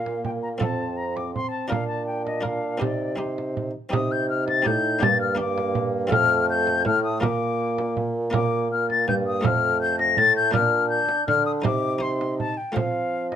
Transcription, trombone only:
0.00 0.63 A#3 medium
0.61 1.35 C4 medium
1.36 1.73 C4 medium
1.72 2.44 D4 medium
2.45 2.84 D4 medium
2.82 3.19 D#4 medium
3.20 3.74 D#4 soft
3.93 4.63 D#4 medium
4.67 5.05 D#4 medium
5.03 5.40 A#3 medium
5.40 6.14 A#3 medium
6.13 6.85 A3 medium
6.86 7.22 A3 medium
7.23 8.13 A#3 medium
8.35 8.69 A#3 medium
8.71 9.46 A#3 medium
9.45 10.18 A3 medium
10.19 10.57 A3 medium
10.56 11.27 D4 medium
11.28 11.67 D4 medium
11.65 12.01 D#4 medium
12.01 12.56 D#4 medium
12.77 13.36 C4 medium

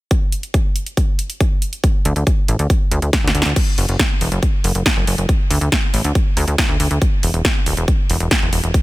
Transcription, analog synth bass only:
2.05 2.13 D2 medium
2.16 2.24 D2 medium
2.48 2.56 A1 medium
2.59 2.67 D2 medium
2.91 3.00 D2 medium
3.02 3.10 D2 medium
3.24 3.32 D2 medium
3.35 3.43 D2 loud
3.45 3.53 D2 medium
3.78 3.86 F#1 medium
3.89 3.97 F#1 medium
4.21 4.29 E1 medium
4.32 4.40 F#1 medium
4.64 4.72 F#1 medium
4.75 4.83 F#1 medium
4.97 5.05 F#1 medium
5.07 5.15 F#1 loud
5.18 5.26 F#1 medium
5.50 5.59 D2 loud
5.61 5.69 D2 medium
5.94 6.02 A1 medium
6.04 6.12 D2 medium
6.37 6.45 D2 loud
6.48 6.56 D2 medium
6.69 6.77 D2 medium
6.80 6.88 D2 medium
6.91 6.99 D2 medium
7.23 7.31 E1 medium
7.34 7.42 E1 medium
7.66 7.74 D1 medium
7.77 7.85 E1 medium
8.10 8.18 E1 medium
8.21 8.28 E1 medium
8.42 8.50 E1 medium
8.53 8.61 E1 medium
8.64 8.72 E1 medium

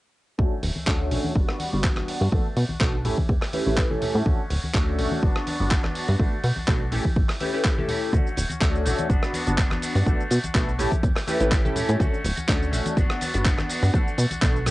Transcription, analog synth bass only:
0.39 0.47 D2 loud
0.63 0.71 D1 medium
0.76 0.85 D2 soft
0.87 1.13 D2 loud
1.11 1.20 A1 medium
1.36 1.44 G1 medium
1.73 2.02 G1 medium
2.21 2.29 G2 medium
2.32 2.41 B1 loud
2.57 2.65 B2 medium
2.70 2.79 B1 soft
2.81 3.07 B1 loud
3.05 3.13 A1 loud
3.29 3.37 E2 medium
3.67 3.96 A1 medium
4.02 4.12 A2 soft
4.15 4.22 A2 medium
4.26 4.34 D2 loud
4.50 4.58 D1 medium
4.74 5.00 D2 loud
4.99 5.07 A1 loud
5.23 5.31 G1 medium
5.60 5.90 G1 medium
6.09 6.16 G2 medium
6.20 6.28 B1 loud
6.44 6.52 B2 medium
6.57 6.66 B1 soft
6.68 6.94 B1 loud
6.92 7.00 A1 loud
7.16 7.24 A1 medium
8.13 8.21 D2 loud
8.37 8.45 D1 loud
8.51 8.59 D2 soft
8.61 8.87 D2 loud
8.86 8.94 A1 loud
9.10 9.18 G1 medium
9.47 9.77 G1 medium
9.95 10.03 G2 medium
10.06 10.15 B1 loud
10.31 10.39 B2 loud
10.44 10.53 B1 soft
10.55 10.81 B1 loud
10.79 10.87 A1 loud
11.03 11.11 E2 medium
11.41 11.70 A1 medium
11.76 11.86 A2 soft
11.89 11.97 A2 medium
12.00 12.08 D2 loud
12.25 12.33 D1 loud
12.38 12.46 D2 soft
12.49 12.74 D2 loud
12.73 12.81 A1 loud
12.97 13.05 G1 medium
13.34 13.64 G1 medium
13.83 13.90 G2 medium
13.94 14.02 B1 loud
14.18 14.26 B2 medium
14.31 14.40 B1 soft
14.42 14.68 B1 loud
14.66 14.71 A1 loud

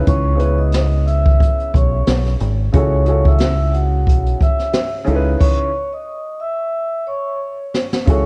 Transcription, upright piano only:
0.00 0.34 C#3 medium
0.00 0.35 C#4 medium
0.00 0.36 D#4 medium
0.00 0.36 E4 medium
0.00 0.38 B4 loud
0.35 1.62 C#3 medium
0.35 1.63 B3 medium
0.35 1.63 C#4 medium
0.35 1.64 E4 medium
0.40 1.64 B4 medium
2.72 3.04 C#3 medium
2.72 3.05 C#4 medium
2.72 3.05 E4 medium
2.72 3.06 F#4 medium
2.72 3.06 G#4 medium
2.77 3.06 A4 medium
3.05 4.31 C#3 medium
3.05 4.31 C#4 medium
3.05 4.31 E4 medium
3.05 4.32 F#4 medium
3.05 4.32 G#4 medium
3.10 4.33 A4 medium
5.04 5.68 C#3 medium
5.04 5.68 C#4 medium
5.04 5.69 D#4 medium
5.04 5.70 E4 medium
5.09 5.15 A4 medium
5.15 5.73 B4 medium
8.06 8.26 C#3 medium
8.06 8.26 C#4 medium
8.06 8.26 E4 medium
8.06 8.26 F#4 medium
8.06 8.26 G#4 medium
8.10 8.26 A4 medium

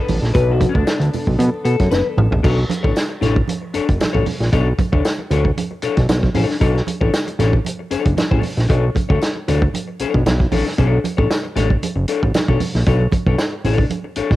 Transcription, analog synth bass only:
0.09 0.20 A1 medium
0.22 0.32 A#1 medium
0.35 0.67 B1 loud
0.75 0.85 D2 medium
1.00 1.10 D2 medium
1.27 1.37 B1 medium
1.39 1.50 B2 loud
1.65 1.76 B2 loud
1.80 1.90 F#2 medium
1.91 2.03 F#1 loud
2.17 2.28 A1 medium
2.31 2.41 A#1 medium
2.44 2.65 B1 loud
2.84 2.94 A1 medium
3.22 3.43 A1 medium
3.74 3.80 F#1 soft
3.89 3.98 F#1 medium
4.01 4.06 A1 medium
4.14 4.24 A1 loud
4.40 4.50 A#1 medium
4.53 4.73 B1 loud
4.93 5.03 D2 medium
5.31 5.51 D2 medium
5.83 5.89 B1 soft
5.97 6.07 B1 loud
6.09 6.30 B1 loud
6.35 6.46 A1 medium
6.61 6.82 B1 loud
7.01 7.11 A1 medium
7.39 7.60 A1 loud
7.91 7.97 F#1 soft
8.06 8.15 F#1 medium
8.18 8.23 A1 soft
8.31 8.41 A1 medium
8.57 8.67 A#1 medium
8.70 8.90 B1 loud
9.10 9.20 D2 loud
9.48 9.69 D2 medium
10.00 10.05 B1 medium
10.14 10.24 B1 loud
10.26 10.47 B1 loud
10.53 10.63 A1 medium
10.78 10.99 B1 loud
11.18 11.28 A1 loud
11.56 11.77 A1 loud
11.96 12.06 F#1 medium
12.23 12.32 A1 medium
12.34 12.40 B1 medium
12.48 12.58 B1 medium
12.75 12.84 A#1 medium
12.87 13.07 B1 loud
13.26 13.36 B1 medium
13.64 13.85 A1 medium
14.17 14.22 A1 soft
14.31 14.36 A1 medium

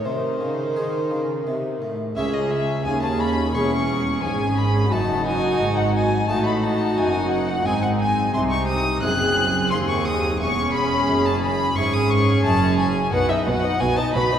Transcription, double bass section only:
2.16 2.81 C#2 medium
2.85 3.53 D#2 medium
3.54 4.23 E1 medium
4.23 4.92 G#1 medium
4.92 5.59 F#1 medium
5.60 6.28 G#1 medium
6.29 6.96 A1 medium
6.97 7.64 F#1 medium
7.65 8.32 G#1 medium
8.33 9.01 C2 medium
9.02 9.71 F#1 medium
9.71 10.39 D#2 medium
10.39 11.07 E1 medium
11.08 11.75 F#1 medium
11.75 12.43 G#1 medium
12.44 13.11 F#1 medium
13.13 13.21 B1 medium
13.47 13.55 B1 medium
13.80 13.88 B1 medium
14.14 14.22 B1 medium

